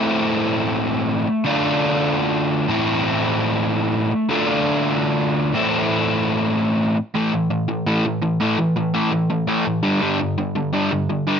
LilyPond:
\new Staff \with { instrumentName = "Overdriven electric guitar" } { \clef bass \time 4/4 \key a \minor \tempo 4 = 168 <a, e a c' e'>2.~ <a, e a c' e'>8 r8 | <d a d' f'>2.~ <d a d' f'>8 <a, e a c' e'>8~ | <a, e a c' e'>2.~ <a, e a c' e'>8 r8 | <d a d' f'>2.~ <d a d' f'>8 <a, e a c' e'>8~ |
<a, e a c' e'>2.~ <a, e a c' e'>8 r8 | <a, e a>8 <a, e>8 <a, e>8 <a, e>8 <a, e a>8 <a, e>8 <a, e>8 <a, e a>8 | <a, e>8 <a, e>8 <a, e a>8 <a, e>8 <a, e>8 <a, e a>8 <a, e>8 <g, d g>8 | <g, d g>8 <g, d>8 <g, d>8 <g, d>8 <g, d g>8 <g, d>8 <g, d>8 <g, d g>8 | }